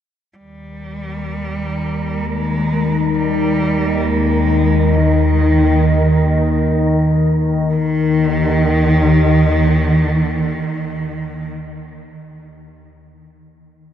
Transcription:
0.34 G3 A#4
0.39 D#2 D#3
2.26 G#3
3.15 G3
4.07 G#3
4.99 D#3
7.74 D#2 D#3

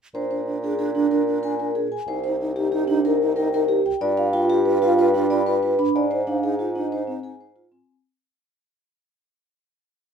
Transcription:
0.14 A#2 D4 C5
0.30 D4 C5
0.46 D4
0.62 D4 G#4
0.79 D4 G#4
0.95 D4
1.11 D4 A#4
1.27 D4
1.43 D4 A#4 G#5
1.59 D4 A#4
1.75 D4 G#4
1.92 G#5
2.07 C2 D#4 C5
2.24 D#4 C5
2.40 D#4
2.56 D#4 G4
2.72 D#4 G4
2.88 D4 D#4
3.05 D#4 A#4
3.21 D#4
3.36 D#4 A#4 G5
3.53 D#4 A#4
3.68 D#4 G4
3.86 G5
4.01 G2 F4 D5
4.17 F4 F5
4.33 F4 G5
4.49 F4 G4
4.65 F4 B4
4.82 F4 F5
4.98 F4 B4
5.14 D4 F4
5.30 F4 D5 B5
5.46 F4 B4
5.63 F4 B4
5.79 D4 B5
5.95 G#2 D#4 D5
6.11 D#4 C5
6.27 D4 D#4 F5
6.43 D#4 G#4
6.59 D#4 F4
6.75 D4 D#4 D#5
6.92 D#4 C5
7.07 C4 D#4
7.23 D#4 G#4 G#5
7.40 D#4 C5
7.56 D#4 F4
7.72 C4 G#5

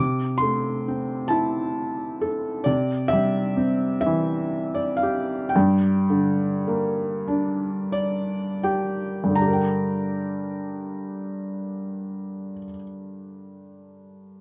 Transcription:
Already playing: C3 D6
0.38 A3 C6
0.88 C4
1.28 E4 A5
2.21 A4
2.64 C3 D5
3.08 E5
3.13 G3
3.57 C4
4.01 E5
4.06 E3
4.75 D5
4.97 F5
5.03 G4
5.49 G5
5.56 G2
6.10 D3
6.67 A#3
7.28 D4
7.92 D5
8.63 G4 G5
9.24 G2
9.29 D3
9.35 D4 A#5
9.42 G4
9.48 A#4
9.53 G5

